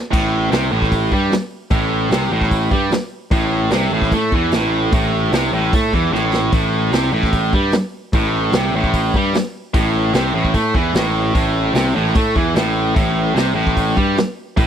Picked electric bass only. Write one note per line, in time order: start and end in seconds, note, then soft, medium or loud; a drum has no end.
0.13 0.49 A1 medium
0.52 0.70 C2 loud
0.72 1.09 A1 medium
1.11 1.30 G2 medium
1.30 muted picked electric bass stroke soft
1.71 2.08 A1 medium
2.10 2.29 C2 medium
2.30 2.68 A1 medium
2.71 2.90 G2 medium
2.91 muted picked electric bass stroke soft
3.31 3.69 A1 loud
3.71 3.90 C2 medium
3.92 4.10 A1 medium
4.11 4.30 A2 medium
4.32 4.50 E2 medium
4.52 4.89 A1 medium
4.92 5.29 A1 medium
5.32 5.50 C2 medium
5.52 5.70 A1 medium
5.73 5.91 A2 medium
5.93 6.11 E2 medium
6.12 6.49 A1 medium
6.53 6.90 A1 medium
6.92 7.11 C2 medium
7.13 7.50 A1 medium
7.53 7.71 G2 medium
7.72 muted picked electric bass stroke soft
8.13 8.50 A1 loud
8.52 8.71 C2 loud
8.72 9.10 A1 medium
9.14 9.32 G2 medium
9.33 muted picked electric bass stroke soft
9.74 10.12 A1 medium
10.14 10.33 C2 loud
10.34 10.53 A1 medium
10.54 10.73 A2 medium
10.75 10.93 E2 medium
10.93 11.32 A1 medium
11.35 11.72 A1 loud
11.74 11.93 C2 medium
11.95 12.14 A1 medium
12.15 12.34 A2 medium
12.36 12.54 E2 medium
12.55 12.93 A1 medium
12.96 13.34 A1 medium
13.35 13.54 C2 medium
13.55 13.93 A1 medium
13.96 14.15 G2 medium
14.16 muted picked electric bass stroke soft
14.58 14.67 A1 medium